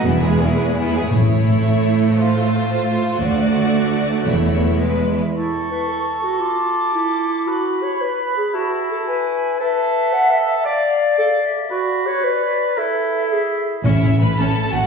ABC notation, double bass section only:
X:1
M:6/8
L:1/8
Q:3/8=113
K:A
V:1 name="Double bass section" clef=bass
E,,,2 z4 | A,,,2 z4 | z6 | D,,2 z4 |
E,,,2 z4 | z6 | z6 | z6 |
z6 | z6 | z6 | z6 |
z6 | A,,, A,,, A,,, A,,, z A,,, |]